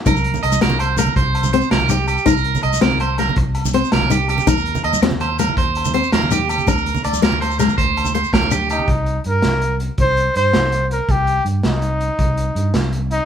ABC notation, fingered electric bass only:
X:1
M:12/8
L:1/8
Q:3/8=109
K:Cm
V:1 name="Fingered electric bass" clef=bass
C,,2 C,, C,,3 C,,3 C,,3 | C,,2 C,, C,,3 C,,3 C,,3 | E,,2 E,, E,,3 E,,3 E,,3 | D,,2 D,, D,,3 D,,3 D,,3 |
C,,2 G,, C,,3 C,,2 G,, C,,3 | C,,2 G,, C,,3 C,,2 G,, C,,3 |]